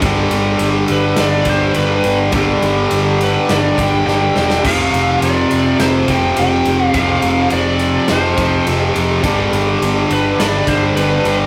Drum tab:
CC |----------------|----------------|x---------------|----------------|
RD |x-x-x-x-x-x-x-x-|x-x-x-x-x-x-----|--x-x-x-x-x-x-x-|x-x-x-x-x-x-x-x-|
SD |--o-----o-------|--o-----o---o-oo|--------o-------|--------o-------|
BD |o---------o-----|o---------o-----|o---------o-----|o---------o-----|

CC |----------------|
RD |x-x-x-x-x-x-x-x-|
SD |--------o-------|
BD |o---------o-----|